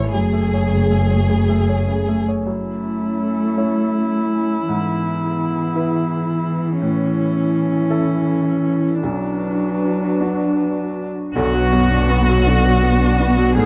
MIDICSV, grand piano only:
0, 0, Header, 1, 2, 480
1, 0, Start_track
1, 0, Tempo, 782269
1, 75, Time_signature, 6, 3, 24, 8
1, 1515, Tempo, 737101
1, 2955, Tempo, 715990
1, 5355, Tempo, 772201
1, 7275, Tempo, 737101
1, 8778, End_track
2, 0, Start_track
2, 0, Title_t, "Grand piano"
2, 0, Program_c, 0, 0
2, 0, Control_c, 0, 64, 127
2, 0, Note_on_c, 0, 52, 37
2, 0, Note_on_c, 0, 57, 30
2, 0, Note_on_c, 0, 64, 29
2, 0, Note_on_c, 0, 73, 31
2, 67, Note_off_c, 0, 64, 0
2, 69, Note_off_c, 0, 73, 0
2, 83, Note_on_c, 0, 42, 34
2, 87, Control_c, 0, 64, 0
2, 91, Note_off_c, 0, 57, 0
2, 93, Note_off_c, 0, 52, 0
2, 197, Control_c, 0, 64, 127
2, 201, Note_on_c, 0, 57, 28
2, 328, Note_on_c, 0, 68, 25
2, 328, Note_on_c, 0, 73, 30
2, 390, Note_off_c, 0, 57, 0
2, 430, Note_off_c, 0, 68, 0
2, 430, Note_off_c, 0, 73, 0
2, 440, Note_on_c, 0, 49, 26
2, 554, Note_on_c, 0, 57, 25
2, 628, Note_off_c, 0, 49, 0
2, 674, Note_on_c, 0, 68, 27
2, 675, Note_on_c, 0, 73, 30
2, 744, Note_off_c, 0, 57, 0
2, 781, Note_off_c, 0, 68, 0
2, 782, Note_off_c, 0, 73, 0
2, 796, Note_on_c, 0, 49, 29
2, 914, Note_on_c, 0, 57, 31
2, 987, Note_off_c, 0, 49, 0
2, 1034, Note_on_c, 0, 68, 26
2, 1037, Note_on_c, 0, 73, 30
2, 1107, Note_off_c, 0, 57, 0
2, 1143, Note_off_c, 0, 68, 0
2, 1145, Note_off_c, 0, 73, 0
2, 1153, Note_on_c, 0, 49, 30
2, 1276, Note_on_c, 0, 57, 25
2, 1348, Note_off_c, 0, 49, 0
2, 1399, Note_on_c, 0, 68, 25
2, 1400, Note_on_c, 0, 73, 27
2, 1467, Note_off_c, 0, 57, 0
2, 1494, Note_off_c, 0, 42, 0
2, 1504, Note_off_c, 0, 68, 0
2, 1504, Note_off_c, 0, 73, 0
2, 1513, Note_on_c, 0, 42, 32
2, 1528, Control_c, 0, 64, 0
2, 1653, Control_c, 0, 64, 127
2, 2235, Note_on_c, 0, 64, 30
2, 2236, Note_on_c, 0, 73, 30
2, 2927, Note_off_c, 0, 64, 0
2, 2928, Note_off_c, 0, 73, 0
2, 2929, Note_off_c, 0, 42, 0
2, 2957, Note_on_c, 0, 44, 41
2, 2969, Control_c, 0, 64, 0
2, 3073, Control_c, 0, 64, 127
2, 3674, Note_on_c, 0, 64, 35
2, 3678, Note_on_c, 0, 71, 35
2, 4360, Note_off_c, 0, 64, 0
2, 4362, Note_off_c, 0, 44, 0
2, 4362, Note_off_c, 0, 71, 0
2, 4389, Note_on_c, 0, 45, 45
2, 4401, Control_c, 0, 64, 0
2, 4514, Control_c, 0, 64, 127
2, 5115, Note_on_c, 0, 64, 36
2, 5115, Note_on_c, 0, 69, 38
2, 5806, Note_off_c, 0, 45, 0
2, 5810, Note_off_c, 0, 64, 0
2, 5810, Note_off_c, 0, 69, 0
2, 5833, Note_on_c, 0, 35, 41
2, 5845, Control_c, 0, 64, 0
2, 5948, Control_c, 0, 64, 127
2, 6564, Note_on_c, 0, 62, 27
2, 6567, Note_on_c, 0, 66, 33
2, 7250, Note_off_c, 0, 35, 0
2, 7251, Note_off_c, 0, 62, 0
2, 7252, Note_off_c, 0, 66, 0
2, 7280, Note_on_c, 0, 35, 65
2, 7287, Control_c, 0, 64, 0
2, 7396, Control_c, 0, 64, 127
2, 7520, Note_on_c, 0, 42, 48
2, 7761, Note_on_c, 0, 59, 49
2, 7908, Note_off_c, 0, 42, 0
2, 8004, Note_on_c, 0, 62, 54
2, 8148, Note_off_c, 0, 59, 0
2, 8243, Note_on_c, 0, 66, 56
2, 8385, Note_off_c, 0, 62, 0
2, 8478, Note_on_c, 0, 62, 48
2, 8620, Note_off_c, 0, 66, 0
2, 8692, Note_off_c, 0, 35, 0
2, 8715, Note_off_c, 0, 62, 0
2, 8715, Note_on_c, 0, 44, 66
2, 8726, Control_c, 0, 64, 0
2, 8778, Note_off_c, 0, 44, 0
2, 8778, End_track
0, 0, End_of_file